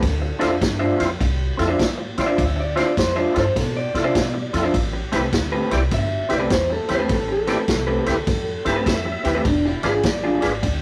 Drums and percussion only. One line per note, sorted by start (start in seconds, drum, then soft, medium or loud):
0.03 kick medium
0.03 snare soft
0.03 ride medium
0.41 snare soft
0.41 ride medium
0.61 kick medium
0.61 snare loud
0.61 ride medium
1.00 snare soft
1.00 ride medium
1.21 kick medium
1.21 ride medium
1.59 snare soft
1.59 ride medium
1.79 kick medium
1.79 snare loud
1.79 ride medium
2.18 snare soft
2.18 ride medium
2.38 kick medium
2.38 ride medium
2.77 snare soft
2.77 ride medium
2.97 kick medium
2.97 snare loud
2.97 ride medium
3.36 snare soft
3.36 ride medium
3.56 kick medium
3.56 snare soft
3.56 ride medium
3.95 snare soft
3.95 ride medium
4.15 kick medium
4.15 snare loud
4.15 ride medium
4.54 snare soft
4.54 ride medium
4.74 kick medium
4.74 ride medium
5.12 snare soft
5.12 ride medium
5.33 kick medium
5.33 snare loud
5.33 ride medium
5.71 snare soft
5.71 ride medium
5.91 kick medium
5.91 snare soft
5.91 ride medium
6.30 snare soft
6.30 ride medium
6.50 kick medium
6.50 snare loud
6.50 ride medium
6.89 snare soft
6.89 ride medium
7.09 kick medium
7.09 snare soft
7.09 ride medium
7.47 snare soft
7.47 ride medium
7.68 kick medium
7.68 snare loud
7.68 ride medium
8.06 snare soft
8.06 ride medium
8.27 kick medium
8.27 snare soft
8.27 ride medium
8.66 snare soft
8.66 ride medium
8.86 kick medium
8.86 snare loud
8.86 ride medium
9.25 snare soft
9.25 ride medium
9.45 kick medium
9.45 ride medium
9.83 snare soft
9.83 ride medium
10.03 kick medium
10.03 snare loud
10.03 ride medium
10.42 snare soft
10.42 ride medium
10.63 kick medium
10.63 ride medium